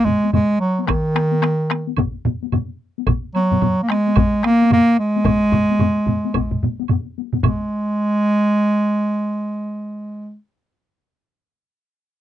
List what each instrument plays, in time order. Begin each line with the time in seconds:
0.05 bass clarinet G#3, taiko low-mid, taiko mid, taiko high
0.24 taiko high
0.33 bass clarinet G#3, taiko low-mid, taiko mid, taiko high, high woodblock
0.60 bass clarinet F#3
0.79 bass clarinet F#3, taiko high
0.86 bass clarinet D#3, taiko rim, taiko, taiko high, high woodblock
1.15 taiko rim, taiko high, high woodblock
1.31 taiko high
1.42 taiko rim, taiko high, high woodblock
1.70 taiko rim, taiko high
1.87 taiko high
1.97 taiko, taiko low-mid, taiko mid, taiko high, high woodblock
2.25 taiko low-mid, taiko mid, taiko high
2.43 taiko high
2.52 taiko low-mid, taiko mid, taiko high, high woodblock
2.98 taiko high
3.07 taiko, taiko low-mid, taiko mid, taiko high, high woodblock
3.35 bass clarinet F#3, taiko high, high woodblock
3.51 taiko low-mid, taiko mid, taiko high
3.62 taiko low-mid, taiko mid, taiko high, high woodblock
3.83 bass clarinet A#3
3.89 bass clarinet G#3, taiko rim
3.90 taiko rim, taiko high
4.07 taiko high
4.16 taiko, taiko low-mid, taiko mid, taiko high, high woodblock
4.43 bass clarinet A#3, taiko rim, taiko high
4.62 taiko high
4.70 bass clarinet A#3, taiko low-mid, taiko mid, taiko high, high woodblock
4.99 bass clarinet G#3
5.16 taiko high
5.25 taiko, taiko low-mid, taiko mid, taiko high, high woodblock
5.52 taiko low-mid, taiko mid, taiko high, high woodblock
5.70 taiko high
5.79 taiko low-mid, taiko mid, taiko high, high woodblock
6.06 taiko low-mid, taiko mid, taiko high
6.25 taiko high
6.34 taiko, taiko low-mid, taiko mid, taiko high, high woodblock
6.51 taiko low-mid, taiko mid
6.63 taiko low-mid, taiko mid, taiko high
6.80 taiko high
6.88 taiko low-mid, taiko mid, taiko high, high woodblock
7.18 taiko high
7.33 taiko low-mid, taiko mid, taiko high
7.43 bass clarinet G#3, taiko, taiko low-mid, taiko mid, taiko high, high woodblock